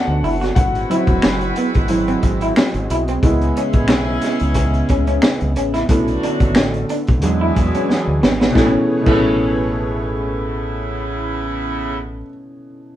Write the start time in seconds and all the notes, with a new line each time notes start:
Already playing: A3 B3 D4 F#4 B4 F#5 G#5 A5
0.07 D2
0.23 F#1 E4, open hi-hat
0.41 F#4, snare, closed hi-hat
0.55 G#1 G#3 C4 E4 F#4 B4 F#5, kick, closed hi-hat
0.75 closed hi-hat
0.90 F#3 C4 E4, closed hi-hat
1.07 E1, kick, closed hi-hat
1.22 F#1, finger snap, snare
1.41 closed hi-hat
1.56 B3, closed hi-hat
1.74 G#1, kick, closed hi-hat
1.88 F#3 C4 E4, closed hi-hat
2.08 C4, closed hi-hat
2.23 G#1, muted clean electric guitar stroke, kick, closed hi-hat
2.41 E4, closed hi-hat
2.56 finger snap, muted clean electric guitar stroke, snare
2.74 G#1, closed hi-hat
2.90 B1 E4, closed hi-hat
3.08 C4, closed hi-hat
3.22 C#2 C#3 G#3 B3 C#4 E4 G#4, kick, closed hi-hat
3.42 closed hi-hat
3.57 C#4, closed hi-hat
3.73 A1, kick, closed hi-hat
3.88 B1, finger snap, snare
4.22 G#3, snare, closed hi-hat
4.39 C#2, closed hi-hat
4.54 muted clean electric guitar stroke, kick, closed hi-hat
4.74 closed hi-hat
4.89 C#2 C#4, kick, closed hi-hat
5.07 C#4, closed hi-hat
5.22 finger snap, muted clean electric guitar stroke, snare
5.40 C#2, closed hi-hat
5.56 A1 C#4, closed hi-hat
5.74 E4, snare, closed hi-hat
5.88 B1 D3 F#3 A3 C#4 D4 E4 F#4, kick, closed hi-hat
6.08 closed hi-hat
6.23 D4, closed hi-hat
6.40 G#1, kick, closed hi-hat
6.55 A1, finger snap, snare
6.74 closed hi-hat
6.89 D4, closed hi-hat
7.07 B1, kick, closed hi-hat
7.22 E2 E3 F#3 G#3 B3 D4 E4 F#4 G#4, closed hi-hat
7.41 E4
7.56 E2, muted clean electric guitar stroke, kick, closed hi-hat
7.75 C#4, closed hi-hat
7.90 muted clean electric guitar stroke, snare
8.07 D2
8.23 G#1 B3, snare
8.40 B3, snare
8.50 B2
8.54 A1 C#3 E3 A3 B3 E4 G#4 B4 C#5, kick, snare
8.59 A3
8.63 C#4
9.01 B2
9.06 A1 C#3 E3 A3 B3 E4, kick, crash
9.10 A3
9.14 C#4